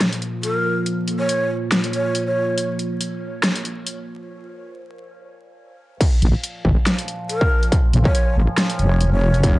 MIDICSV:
0, 0, Header, 1, 5, 480
1, 0, Start_track
1, 0, Key_signature, -5, "minor"
1, 0, Tempo, 428571
1, 967, Time_signature, 4, 2, 24, 8
1, 10741, End_track
2, 0, Start_track
2, 0, Title_t, "Ney"
2, 0, Program_c, 0, 77
2, 485, Note_on_c, 0, 70, 89
2, 859, Note_off_c, 0, 70, 0
2, 1337, Note_on_c, 0, 73, 98
2, 1685, Note_off_c, 0, 73, 0
2, 2164, Note_on_c, 0, 73, 93
2, 2512, Note_off_c, 0, 73, 0
2, 2538, Note_on_c, 0, 73, 89
2, 3019, Note_off_c, 0, 73, 0
2, 8170, Note_on_c, 0, 70, 98
2, 8542, Note_off_c, 0, 70, 0
2, 9020, Note_on_c, 0, 73, 101
2, 9366, Note_off_c, 0, 73, 0
2, 9846, Note_on_c, 0, 73, 93
2, 10193, Note_off_c, 0, 73, 0
2, 10219, Note_on_c, 0, 73, 98
2, 10700, Note_off_c, 0, 73, 0
2, 10741, End_track
3, 0, Start_track
3, 0, Title_t, "Synth drone"
3, 0, Program_c, 1, 95
3, 0, Note_on_c, 1, 46, 70
3, 0, Note_on_c, 1, 53, 70
3, 4805, Note_off_c, 1, 46, 0
3, 4805, Note_off_c, 1, 53, 0
3, 6729, Note_on_c, 1, 46, 75
3, 6729, Note_on_c, 1, 53, 73
3, 10741, Note_off_c, 1, 46, 0
3, 10741, Note_off_c, 1, 53, 0
3, 10741, End_track
4, 0, Start_track
4, 0, Title_t, "Wobble bass"
4, 0, Program_c, 2, 39
4, 6968, Note_on_c, 2, 34, 105
4, 7090, Note_off_c, 2, 34, 0
4, 7447, Note_on_c, 2, 32, 90
4, 7570, Note_off_c, 2, 32, 0
4, 8886, Note_on_c, 2, 34, 104
4, 9009, Note_off_c, 2, 34, 0
4, 9365, Note_on_c, 2, 32, 83
4, 9489, Note_off_c, 2, 32, 0
4, 9845, Note_on_c, 2, 29, 92
4, 10741, Note_off_c, 2, 29, 0
4, 10741, End_track
5, 0, Start_track
5, 0, Title_t, "Drums"
5, 5, Note_on_c, 9, 38, 110
5, 5, Note_on_c, 9, 42, 78
5, 117, Note_off_c, 9, 38, 0
5, 117, Note_off_c, 9, 42, 0
5, 140, Note_on_c, 9, 42, 52
5, 245, Note_off_c, 9, 42, 0
5, 245, Note_on_c, 9, 42, 53
5, 357, Note_off_c, 9, 42, 0
5, 484, Note_on_c, 9, 42, 78
5, 596, Note_off_c, 9, 42, 0
5, 965, Note_on_c, 9, 42, 82
5, 1077, Note_off_c, 9, 42, 0
5, 1205, Note_on_c, 9, 42, 57
5, 1317, Note_off_c, 9, 42, 0
5, 1445, Note_on_c, 9, 42, 89
5, 1557, Note_off_c, 9, 42, 0
5, 1925, Note_on_c, 9, 38, 114
5, 1925, Note_on_c, 9, 42, 79
5, 2037, Note_off_c, 9, 38, 0
5, 2037, Note_off_c, 9, 42, 0
5, 2058, Note_on_c, 9, 42, 53
5, 2164, Note_off_c, 9, 42, 0
5, 2164, Note_on_c, 9, 42, 54
5, 2276, Note_off_c, 9, 42, 0
5, 2406, Note_on_c, 9, 42, 81
5, 2518, Note_off_c, 9, 42, 0
5, 2885, Note_on_c, 9, 42, 83
5, 2997, Note_off_c, 9, 42, 0
5, 3127, Note_on_c, 9, 42, 56
5, 3239, Note_off_c, 9, 42, 0
5, 3367, Note_on_c, 9, 42, 83
5, 3479, Note_off_c, 9, 42, 0
5, 3846, Note_on_c, 9, 38, 118
5, 3846, Note_on_c, 9, 42, 77
5, 3958, Note_off_c, 9, 38, 0
5, 3958, Note_off_c, 9, 42, 0
5, 3981, Note_on_c, 9, 42, 56
5, 4088, Note_off_c, 9, 42, 0
5, 4088, Note_on_c, 9, 42, 52
5, 4200, Note_off_c, 9, 42, 0
5, 4329, Note_on_c, 9, 42, 76
5, 4441, Note_off_c, 9, 42, 0
5, 6727, Note_on_c, 9, 36, 121
5, 6728, Note_on_c, 9, 42, 83
5, 6728, Note_on_c, 9, 49, 98
5, 6839, Note_off_c, 9, 36, 0
5, 6840, Note_off_c, 9, 42, 0
5, 6840, Note_off_c, 9, 49, 0
5, 6968, Note_on_c, 9, 42, 56
5, 7080, Note_off_c, 9, 42, 0
5, 7208, Note_on_c, 9, 42, 89
5, 7320, Note_off_c, 9, 42, 0
5, 7447, Note_on_c, 9, 36, 61
5, 7559, Note_off_c, 9, 36, 0
5, 7689, Note_on_c, 9, 38, 109
5, 7689, Note_on_c, 9, 42, 80
5, 7801, Note_off_c, 9, 38, 0
5, 7801, Note_off_c, 9, 42, 0
5, 7823, Note_on_c, 9, 42, 57
5, 7929, Note_off_c, 9, 42, 0
5, 7929, Note_on_c, 9, 42, 52
5, 8041, Note_off_c, 9, 42, 0
5, 8169, Note_on_c, 9, 42, 84
5, 8281, Note_off_c, 9, 42, 0
5, 8300, Note_on_c, 9, 36, 101
5, 8412, Note_off_c, 9, 36, 0
5, 8542, Note_on_c, 9, 42, 40
5, 8646, Note_on_c, 9, 36, 122
5, 8647, Note_off_c, 9, 42, 0
5, 8647, Note_on_c, 9, 42, 83
5, 8758, Note_off_c, 9, 36, 0
5, 8759, Note_off_c, 9, 42, 0
5, 8886, Note_on_c, 9, 42, 58
5, 8998, Note_off_c, 9, 42, 0
5, 9019, Note_on_c, 9, 36, 110
5, 9125, Note_on_c, 9, 42, 89
5, 9131, Note_off_c, 9, 36, 0
5, 9237, Note_off_c, 9, 42, 0
5, 9606, Note_on_c, 9, 38, 120
5, 9606, Note_on_c, 9, 42, 79
5, 9718, Note_off_c, 9, 38, 0
5, 9718, Note_off_c, 9, 42, 0
5, 9740, Note_on_c, 9, 42, 58
5, 9845, Note_off_c, 9, 42, 0
5, 9845, Note_on_c, 9, 42, 54
5, 9957, Note_off_c, 9, 42, 0
5, 10085, Note_on_c, 9, 42, 82
5, 10197, Note_off_c, 9, 42, 0
5, 10461, Note_on_c, 9, 42, 39
5, 10565, Note_off_c, 9, 42, 0
5, 10565, Note_on_c, 9, 42, 83
5, 10566, Note_on_c, 9, 36, 120
5, 10677, Note_off_c, 9, 42, 0
5, 10678, Note_off_c, 9, 36, 0
5, 10741, End_track
0, 0, End_of_file